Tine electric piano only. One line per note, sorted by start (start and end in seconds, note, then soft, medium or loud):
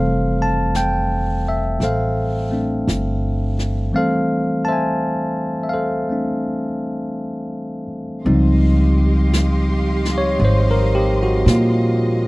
0.00 3.92 E3 soft
0.00 3.93 G3 soft
0.00 2.49 A3 soft
0.00 2.50 C4 soft
0.00 1.78 A4 medium
0.00 1.78 C5 medium
0.00 0.41 F5 medium
0.42 0.73 A5 medium
0.76 1.48 G5 medium
1.48 1.83 E5 medium
1.83 3.91 A4 soft
1.83 3.92 C5 soft
1.83 3.56 F5 medium
2.51 3.93 A3 soft
2.51 3.93 C4 soft
2.51 3.95 D4 soft
3.93 8.25 E3 soft
3.93 8.25 G3 soft
3.93 6.08 A3 soft
3.93 6.09 C4 soft
3.93 4.75 F5 medium
3.97 5.72 A4 soft
3.97 4.67 C5 soft
4.65 5.72 C5 soft
4.65 5.62 E5 medium
4.65 5.58 A5 medium
4.72 4.74 G#5 soft
5.63 5.72 E5 soft
5.69 7.84 F5 medium
5.73 7.86 A4 soft
5.73 7.86 C5 soft
6.09 8.26 A3 soft
6.09 8.25 C4 soft
6.09 8.27 D4 soft
8.25 12.28 F3 soft
8.25 12.28 G3 soft
8.25 12.28 C4 soft
8.25 12.28 D#4 soft
10.18 10.37 C#5 medium
10.45 10.77 C5 medium
10.71 11.07 A#4 medium
10.95 11.20 G4 medium
11.23 11.43 F#4 medium
11.50 12.28 F4 medium